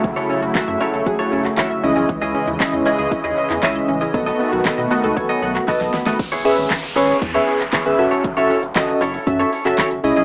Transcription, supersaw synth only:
X:1
M:4/4
L:1/8
Q:1/4=117
K:F#dor
V:1 name="Supersaw synth" clef=bass
[C,F,A,E]6- [C,F,A,E] [C,E,G,d]- | [C,E,G,d]8 | [D,A,B,F]8 | z8 |
z8 |]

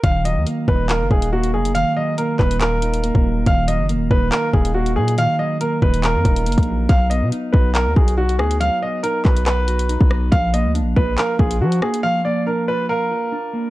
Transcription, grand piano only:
X:1
M:4/4
L:1/8
Q:1/4=140
K:Ebm
V:1 name="Grand piano"
f e z c B A G A | f e B c B4 | f e z c B A G A | f e B c B4 |
f ^d z =B _B A ^F A | f ^d B =B B4 | f e z c B A G A | f =d B c B4 |]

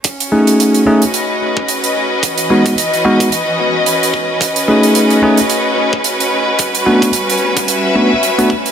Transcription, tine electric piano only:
X:1
M:4/4
L:1/16
Q:"Swing 16ths" 1/4=110
K:F#dor
V:1 name="Tine electric piano"
z2 [A,CDG]4 [A,CDG] z8 z | z2 [G,B,DF]2 z2 [G,B,DF]2 z8 | z2 [A,CDG]4 [A,CDG] z8 z | z2 [A,B,=DF]2 z6 [A,B,DF] z2 [A,B,DF] z2 |]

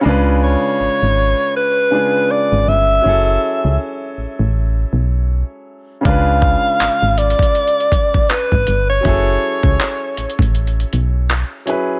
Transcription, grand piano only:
X:1
M:4/4
L:1/8
Q:"Swing 16ths" 1/4=80
K:F#m
V:1 name="Grand piano"
[C,G,D^EB]4- [C,G,DEB] [C,G,DEG]3 | [F,CEGA]8 | [C,G,D^EB]8 | [F,CEGA]6- [F,CEGA] [F,CEGB] |]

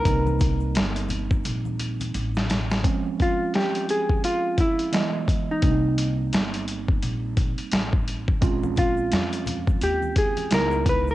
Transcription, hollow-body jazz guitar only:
X:1
M:4/4
L:1/16
Q:"Swing 16ths" 1/4=86
K:Cphr
V:1 name="Hollow-body jazz guitar"
B12 z4 | z2 F2 G2 A2 F2 =E4- E ^D- | ^D3 z12 z | z2 F6 G2 A2 B2 _c B |]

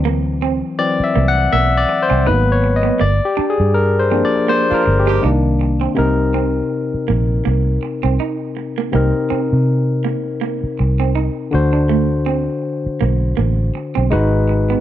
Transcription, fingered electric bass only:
X:1
M:4/4
L:1/16
Q:"Swing 16ths" 1/4=81
K:Cm
V:1 name="Fingered electric bass" clef=bass
D,,4 z2 C,,2 =B,,,2 z C,, A,,,4 | G,,, z2 G,,4 z3 G,,,2 C,,4 | C,,4 z2 B,,,2 C,,2 z C,, z4 | C,, z2 C,4 z3 C,,3 z D,,2- |
D,,4 z2 =B,,,2 =A,,,2 z B,,, _A,,,4 |]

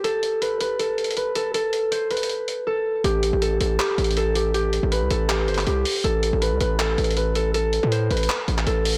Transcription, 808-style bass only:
X:1
M:4/4
L:1/16
Q:1/4=160
K:Am
V:1 name="808-style bass" clef=bass
z16 | z16 | A,,,3 A,,,3 A,,,2 z2 A,,,6- | A,,,3 A,,,2 C,, A,,,4 G,,,2 C,,2 z2 |
A,,,3 A,,,2 C,, A,,,4 A,,,6- | A,,,3 A,,3 A,,,2 z2 A,,,2 A,,,4 |]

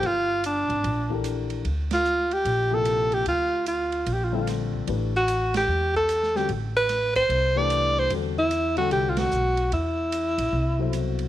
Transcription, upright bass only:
X:1
M:4/4
L:1/8
Q:"Swing" 1/4=149
K:Aphr
V:1 name="Upright bass" clef=bass
G,,,3 _A,,, B,,,4 | D,,4 B,,,4 | D,,4 B,,,4 | A,,,4 E,,4 |
A,,,4 C,,4 | E,,4 C,,2 =B,,,2 | E,,3 B,,, C,,4 |]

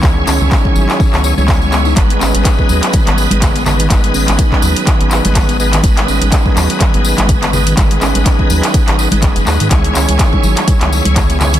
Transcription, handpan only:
X:1
M:4/4
L:1/16
Q:"Swing 16ths" 1/4=124
K:G#m
V:1 name="Handpan" clef=bass
z2 C z3 F, z D, B, z G, z G, B, D | z2 C z3 F, z D, B, z G, z B, z D, | z2 C z D z F, z D, B, z G, z B, z D, | z2 C z D z F, z D, B, z G, z B, z D, |
G, z C z D z F, z D, B, z G, z B, z D, | G, z C z3 F, z D, B, z G, z B, z D, |]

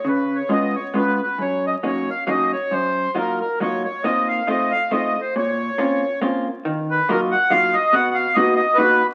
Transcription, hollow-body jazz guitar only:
X:1
M:3/4
L:1/8
Q:"Swing" 1/4=137
K:Db
V:1 name="Hollow-body jazz guitar"
D,2 [A,_CDF] z [A,CDF] z | G,,2 [G,B,DE] z [G,B,DE] z | G,,2 [G,B,EF] z [G,B,EF] z | [B,CEF]2 [=A,CEF] z [A,CEF] z |
B,,2 [B,CDF] z [B,CDF] z | [K:Ebm] E,2 [G,B,EF] z [G,B,EF] z | =B,,2 [^A,=B,^D^F] z [A,B,DF] z |]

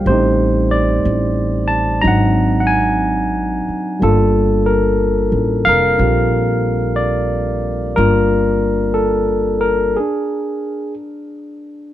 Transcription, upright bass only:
X:1
M:4/4
L:1/8
Q:"Swing" 1/4=61
K:Gm
V:1 name="Upright bass" clef=bass
A,,,2 A,,,2 _A,,,3 z | G,,,2- (3G,,, A,,, F,,, B,,,4 | G,,,4 z4 |]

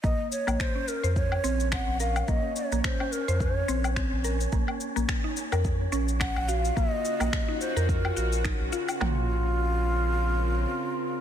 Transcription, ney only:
X:1
M:4/4
L:1/16
Q:"Swing 16ths" 1/4=107
K:Bbm
V:1 name="Ney"
e2 d2 c2 B2 d4 g2 f2 | e2 d2 c2 B2 d4 z4 | z12 g2 f2 | e6 c3/2 c/2 B6 z2 |
F16 |]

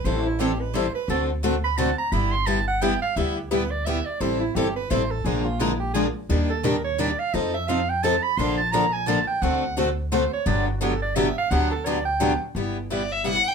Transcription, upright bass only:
X:1
M:3/4
L:1/8
Q:"Swing" 1/4=173
K:G
V:1 name="Upright bass" clef=bass
A,,,6 | D,,6 | G,,,6 | D,,6 |
A,,,2 G,,,2 A,,,2 | _B,,,6 | _E,,6 | =F,,6 |
_B,,,6 | D,,6 | G,,,6 | D,,6 |
G,,,6 |]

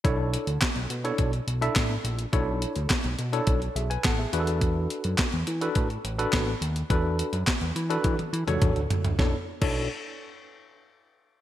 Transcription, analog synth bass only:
X:1
M:4/4
L:1/16
Q:1/4=105
K:Bdor
V:1 name="Analog synth bass" clef=bass
B,,,3 D,, z B,,, B,,2 B,,,2 B,,,2 A,,,2 ^A,,,2 | B,,,3 D,, z B,,, B,,2 B,,,2 B,,,2 A,,,2 E,,2- | E,,3 F,, z E,, E,2 A,,2 A,,,2 A,,,2 ^D,,2 | E,,3 F,, z E,, E,2 E, z E, E,, E,, D,, z D,, |
B,,, z2 B,,,2 z8 z3 |]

